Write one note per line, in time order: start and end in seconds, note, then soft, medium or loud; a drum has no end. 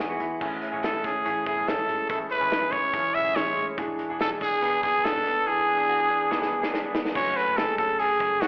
0.00 0.16 E2 medium
0.00 1.25 E3 medium
0.00 0.45 B3 medium
0.00 0.20 E4 medium
0.00 2.13 G#4 medium
0.09 0.42 E3 medium
0.09 0.40 G#3 medium
0.09 0.41 B3 medium
0.09 0.41 E4 medium
0.09 0.41 F#4 medium
0.20 0.37 E2 medium
0.20 0.41 E4 medium
0.20 closed hi-hat medium
0.40 0.59 A1 medium
0.40 2.09 A2 medium
0.40 3.32 A3 medium
0.40 0.72 A3 medium
0.40 3.32 C#4 medium
0.40 0.72 C#4 medium
0.40 0.83 E4 medium
0.40 0.72 E4 medium
0.40 0.71 G#4 medium
0.40 3.33 G#5 medium
0.40 kick loud
0.40 crash medium
0.62 1.04 C#4 medium
0.62 closed hi-hat medium
0.72 0.81 A1 medium
0.72 0.94 A3 medium
0.72 0.94 C#4 medium
0.72 0.93 E4 medium
0.72 0.92 G#4 medium
0.83 1.01 A1 medium
0.83 1.46 E4 medium
0.83 1.07 A4 medium
0.83 snare loud
0.83 closed hi-hat medium
0.93 1.24 C#4 soft
0.93 1.25 E4 medium
0.93 1.25 G#4 medium
1.04 1.22 G#1 medium
1.04 1.66 C#4 medium
1.04 1.46 G#4 medium
1.04 kick medium
1.04 snare soft
1.04 closed hi-hat medium
1.25 1.43 A1 loud
1.25 2.94 E3 medium
1.25 1.57 A3 medium
1.25 1.56 C#4 medium
1.25 1.56 E4 medium
1.25 1.55 G#4 medium
1.25 closed hi-hat medium
1.46 1.64 B1 medium
1.46 2.10 E4 medium
1.46 1.69 G#4 medium
1.46 kick medium
1.46 closed hi-hat medium
1.57 1.79 A3 medium
1.57 1.78 C#4 medium
1.57 1.77 E4 medium
1.57 1.78 G#4 medium
1.67 1.85 A1 loud
1.67 2.29 C#4 medium
1.67 2.09 A4 medium
1.67 snare loud
1.67 closed hi-hat medium
1.79 2.09 C#4 soft
1.79 2.09 E4 soft
1.89 2.06 A1 medium
1.89 3.56 G#3 medium
1.89 closed hi-hat medium
2.09 2.27 A1 loud
2.09 3.78 A2 medium
2.09 2.41 A3 medium
2.09 2.40 C#4 medium
2.09 2.40 E4 medium
2.09 2.51 E4 medium
2.09 2.39 G#4 medium
2.09 2.19 A4 medium
2.09 kick loud
2.09 closed hi-hat medium
2.30 2.72 C#4 medium
2.30 2.73 B4 loud
2.30 closed hi-hat medium
2.41 2.50 A1 medium
2.41 2.63 A3 medium
2.41 2.62 C#4 medium
2.41 2.62 E4 medium
2.41 2.61 G#4 medium
2.51 2.69 A1 loud
2.51 3.14 E4 medium
2.51 snare loud
2.51 closed hi-hat medium
2.62 2.92 C#4 soft
2.62 2.93 E4 soft
2.62 2.93 G#4 medium
2.72 2.90 G#1 medium
2.72 3.35 C#4 medium
2.72 3.16 C#5 loud
2.72 kick medium
2.72 closed hi-hat medium
2.93 3.11 A1 loud
2.93 3.77 E3 medium
2.93 3.24 A3 medium
2.93 3.24 C#4 medium
2.93 3.24 E4 medium
2.93 3.23 G#4 medium
2.93 kick medium
2.93 closed hi-hat loud
3.14 3.32 B1 medium
3.14 3.78 E4 medium
3.14 3.37 E5 loud
3.14 closed hi-hat medium
3.24 3.47 A3 medium
3.24 3.46 C#4 medium
3.24 3.46 E4 medium
3.24 3.44 G#4 medium
3.35 3.53 A1 medium
3.35 3.78 A3 soft
3.35 3.82 C#4 medium
3.35 3.78 C#4 soft
3.35 3.78 G#4 medium
3.35 3.68 C#5 loud
3.35 snare loud
3.35 closed hi-hat medium
3.46 3.78 C#4 soft
3.46 3.78 E4 medium
3.46 3.78 G#4 medium
3.57 3.74 A1 medium
3.57 4.02 G#3 medium
3.57 closed hi-hat medium
3.77 3.95 E1 loud
3.77 5.46 E3 medium
3.77 4.10 E3 medium
3.77 4.09 B3 medium
3.77 7.11 D4 medium
3.77 4.09 D4 medium
3.77 7.11 E4 medium
3.77 4.20 G#4 medium
3.77 4.08 G#4 medium
3.77 7.11 G#5 medium
3.77 kick loud
3.77 closed hi-hat medium
3.99 4.40 D4 medium
3.99 closed hi-hat medium
4.10 4.18 E1 medium
4.10 4.31 E3 medium
4.10 4.31 B3 medium
4.10 4.30 D4 medium
4.10 4.29 G#4 medium
4.19 4.38 E1 medium
4.19 5.08 G#4 medium
4.19 4.30 A4 loud
4.19 snare loud
4.19 closed hi-hat medium
4.30 4.61 B3 soft
4.30 4.61 D4 medium
4.30 4.62 G#4 soft
4.41 4.58 E1 medium
4.41 5.03 D4 medium
4.41 4.81 G#4 loud
4.41 kick medium
4.41 closed hi-hat medium
4.62 4.80 E1 loud
4.62 4.94 E3 medium
4.62 5.25 B3 medium
4.62 4.94 B3 medium
4.62 4.93 D4 medium
4.62 4.93 G#4 medium
4.62 closed hi-hat medium
4.83 5.01 F#1 medium
4.83 5.06 G#4 loud
4.83 kick medium
4.83 closed hi-hat medium
4.94 5.16 E3 medium
4.94 5.15 B3 medium
4.94 5.15 D4 medium
4.94 5.15 G#4 medium
5.04 5.22 E1 loud
5.04 5.67 D4 medium
5.04 5.49 A4 loud
5.04 snare loud
5.04 closed hi-hat medium
5.16 5.45 B3 soft
5.16 5.46 D4 medium
5.26 5.43 E1 loud
5.26 6.30 B3 medium
5.26 closed hi-hat medium
5.46 5.78 E3 medium
5.46 7.15 E3 medium
5.46 5.77 B3 medium
5.46 5.77 D4 medium
5.46 6.73 G#4 medium
5.46 5.76 G#4 medium
5.46 5.89 G#4 medium
5.68 6.09 D4 medium
5.78 6.00 E3 medium
5.78 6.00 B3 medium
5.78 5.99 D4 medium
5.78 5.98 G#4 medium
5.89 6.00 F#4 medium
5.99 6.30 B3 medium
5.99 6.30 D4 medium
5.99 6.30 G#4 medium
5.99 6.51 G#4 medium
6.10 6.73 D4 medium
6.31 6.62 E3 medium
6.31 6.62 B3 loud
6.31 6.93 B3 medium
6.31 6.61 D4 loud
6.31 6.61 G#4 loud
6.31 snare medium
6.42 snare medium
6.53 7.40 G#4 medium
6.62 6.84 E3 medium
6.62 6.84 B3 medium
6.62 6.83 D4 medium
6.62 6.82 G#4 medium
6.62 snare medium
6.74 7.20 D4 medium
6.74 snare medium
6.83 7.16 B3 medium
6.83 7.16 D4 medium
6.83 7.15 G#4 medium
6.95 7.20 B3 medium
6.95 snare loud
7.05 snare medium
7.15 7.33 F#1 loud
7.15 8.47 F#3 medium
7.15 8.47 A3 medium
7.15 8.47 C#4 medium
7.15 8.47 F#4 medium
7.15 7.38 C#5 loud
7.15 8.47 G#5 medium
7.15 kick loud
7.15 crash loud
7.36 8.21 A3 medium
7.36 7.58 B4 loud
7.36 hi-hat pedal medium
7.36 open hi-hat medium
7.47 7.64 F#1 medium
7.57 7.99 G#4 medium
7.57 7.78 A4 loud
7.57 snare loud
7.57 hi-hat pedal medium
7.57 open hi-hat medium
7.78 7.96 F#1 loud
7.78 8.41 C#4 medium
7.78 8.01 A4 medium
7.78 kick medium
7.78 hi-hat pedal medium
7.78 open hi-hat medium
7.99 8.17 F#1 loud
7.99 8.42 G#4 loud
7.99 8.47 G#4 medium
7.99 hi-hat pedal medium
7.99 open hi-hat medium
8.20 8.41 F#1 loud
8.20 8.47 A3 medium
8.20 kick medium
8.20 hi-hat pedal medium
8.20 open hi-hat medium
8.41 8.47 G#1 medium
8.41 8.47 C#4 medium
8.41 8.47 F#4 loud
8.41 snare loud
8.41 hi-hat pedal medium
8.41 open hi-hat medium